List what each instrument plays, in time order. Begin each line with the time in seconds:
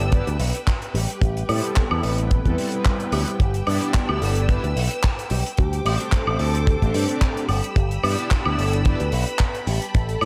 Already playing: picked electric bass G1, analog polysynth G4 D5, analog synth lead A4, violin section B4 G5 E6
0.12 analog polysynth B3 D4 E4 G4 D5, analog synth lead B4, kick, closed hi-hat
0.27 picked electric bass D2, closed hi-hat
0.40 picked electric bass B1, open hi-hat
0.55 closed hi-hat
0.67 kick, clap, closed hi-hat
0.82 closed hi-hat
0.94 picked electric bass A1, analog synth lead G4, violin section G5, open hi-hat
1.10 closed hi-hat
1.21 picked electric bass A1, analog synth lead G4, kick, closed hi-hat
1.37 closed hi-hat
1.48 picked electric bass A2, analog polysynth G3 B3 C4 E4 A4, open hi-hat, high woodblock
1.64 closed hi-hat
1.76 analog synth lead A4, kick, clap, closed hi-hat
1.91 picked electric bass E2, high woodblock
2.03 picked electric bass A1, analog synth lead B4, open hi-hat
2.18 closed hi-hat
2.31 kick, closed hi-hat
2.45 picked electric bass E2, analog polysynth G3 B3 C4 E4 A4, kick, closed hi-hat
2.58 analog polysynth G3 B3 C4 E4 A4, open hi-hat
2.72 analog polysynth G3 B3 C4 E4 B4, closed hi-hat
2.85 kick, clap, closed hi-hat
3.00 closed hi-hat
3.12 picked electric bass D2, analog synth lead G4, open hi-hat, high woodblock
3.28 closed hi-hat
3.40 picked electric bass G1, violin section B4 E6, kick, closed hi-hat
3.54 closed hi-hat
3.66 picked electric bass G2, analog polysynth B3 D4 E4 G4 D5, open hi-hat, high woodblock
3.82 closed hi-hat
3.94 kick, clap, closed hi-hat
4.09 picked electric bass D2, high woodblock
4.22 picked electric bass G1, analog synth lead A4, open hi-hat
4.36 closed hi-hat
4.48 analog polysynth B3 D4 E4 G4 D5, analog synth lead B4, kick, closed hi-hat
4.64 picked electric bass D2, closed hi-hat
4.76 picked electric bass B1, open hi-hat
4.91 closed hi-hat
5.03 kick, clap, closed hi-hat
5.19 closed hi-hat
5.30 picked electric bass B1, analog synth lead G4, open hi-hat
5.46 closed hi-hat
5.57 picked electric bass D2, analog synth lead G4, violin section C5 D6, kick, closed hi-hat
5.73 closed hi-hat
5.85 picked electric bass A1, analog polysynth A3 C4 D4 G4 C5, open hi-hat, high woodblock
6.01 closed hi-hat
6.12 analog synth lead A4, kick, clap, closed hi-hat
6.27 picked electric bass A1, high woodblock
6.39 picked electric bass D2, analog synth lead A4, open hi-hat
6.55 closed hi-hat
6.67 kick, closed hi-hat
6.82 picked electric bass A1, analog polysynth A3 C4 D4 G4 C5, kick, closed hi-hat
6.94 picked electric bass G2, analog polysynth A3 C4 D4 G4 C5, open hi-hat
7.09 analog polysynth A3 C4 D4 G4 D5, closed hi-hat
7.21 kick, clap, closed hi-hat
7.37 closed hi-hat
7.49 picked electric bass G1, analog synth lead G4, violin section G5 B5 E6, open hi-hat, high woodblock
7.64 closed hi-hat
7.76 picked electric bass G1, kick, closed hi-hat
7.91 closed hi-hat
8.03 picked electric bass G2, analog polysynth B3 D4 E4 G4 D5, open hi-hat, high woodblock
8.19 closed hi-hat
8.31 kick, clap, closed hi-hat
8.46 picked electric bass D2, high woodblock
8.58 picked electric bass G1, analog synth lead A4, open hi-hat
8.73 closed hi-hat
8.85 analog polysynth B3 D4 E4 G4 D5, analog synth lead B4, kick, closed hi-hat
9.00 picked electric bass D2, closed hi-hat
9.12 picked electric bass B1, open hi-hat
9.28 closed hi-hat
9.39 kick, clap, closed hi-hat
9.55 closed hi-hat
9.67 picked electric bass A1, analog synth lead G4, violin section A5, open hi-hat
9.82 closed hi-hat
9.94 picked electric bass A1, analog synth lead A4, kick, closed hi-hat
10.09 closed hi-hat
10.21 picked electric bass A2, analog polysynth G3 B3, open hi-hat, high woodblock